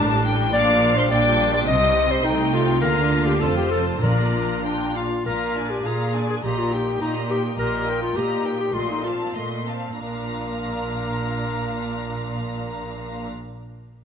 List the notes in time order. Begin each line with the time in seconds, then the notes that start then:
Already playing: A1 A2 G3 D4 A5
0.27 G5
0.53 A#1 A#2 F3 D4 D5 F5 D6
0.97 C5 C6
1.11 A#1 A#2 G3 D4 D5 G5 D6
1.54 D5 D6
1.67 C2 C3 G3 C4 D#5 D#6
2.10 C5 C6
2.24 C2 C3 A3 D#4 D#5 G5
2.53 F4 F5
2.81 D2 D3 A#3 F4 A#4 F5 A#5
3.26 G4 G5
3.41 F1 F2 C4 F4 A4 C5 A5
3.56 G4 G5
3.71 A4 A5
4.02 A#1 A#2 D4 F4 A#4 D5 A#5
4.64 D4 G5
4.95 F4 F5
5.25 A#1 A#2 F4 A#4 F5 A#5
5.55 D4 D5 G#5
5.70 G4
5.84 A#2 F4 G#4 F5 A#5
6.14 D4 D5 G#5
6.30 G#4
6.43 A#1 A#2 G4 D#5 A#5
6.59 F4
6.71 D#4 G4 A#4 G5
6.99 A#2 D#4 G4 D#5 A#5
7.29 D#4 G4 A#4 G5
7.57 A#1 A#2 G4 A#4 D#5 A#5
7.86 D#4 A#4 G5
8.02 F4
8.14 A#2 G4 D#5 A#5
8.43 D#4 A#4 G5
8.60 G4
8.73 A#1 A#2 A3 F4 D#5 C6
8.90 D#4
9.03 C4 F4 F5 A5
9.34 A#2 A3 D#5 C6
9.66 C4 F5 A5
9.98 A#1 A#2 D4 A#4 F5 A#5